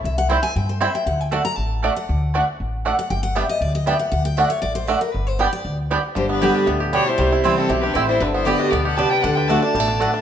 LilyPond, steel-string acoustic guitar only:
\new Staff \with { instrumentName = "Steel-string acoustic guitar" } { \time 4/4 \key g \major \tempo 4 = 235 << { e''8 fis''8 g''8 aes''8 g''8 c''8 e''8 g''8 | fis''8 g''8 a''8 bes''8 a''4. fis''8~ | fis''2 r4. fis''8 | g''8 fis''8 e''8 ees''8 d''8 ees''8 e''8 fis''8 |
fis''8 g''8 e''8 cis''8 d''8 c''8 b'8 bes'8 | b'8 c''8 d''8 d''4 r4. | r4 <d g b g'>4 r2 | r4 <e g c' e'>4 r2 |
r4 <d g b g'>4 r2 | r4 <d a d' fis'>8 <d' fis'>8 r2 | } \\ { r1 | r1 | r1 | r1 |
r1 | r1 | g,2 a,4 b,4 | c2 b,4 a,4 |
g,2 b,4 c4 | d2 b,4 a,4 | } >> }